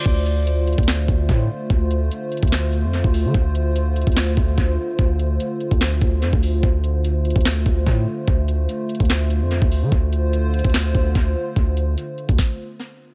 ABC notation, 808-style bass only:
X:1
M:4/4
L:1/16
Q:1/4=146
K:Dm
V:1 name="808-style bass" clef=bass
D,,6- D,, D,,3 D,,2 A,,2 z2 | D,,4 z3 D,,4 F,,2 D,,2 D, | D,,6- D,, D,,3 D,,2 D,,2 z2 | D,,4 z3 D,,3 D,,2 F,, D,,3 |
D,,6- D,, D,,3 D,,2 A,,2 z2 | D,,4 z3 D,,4 F,,2 D,,2 D, | D,,6- D,, D,,3 D,,2 D,,2 z2 | D,,4 z3 D,, z8 |]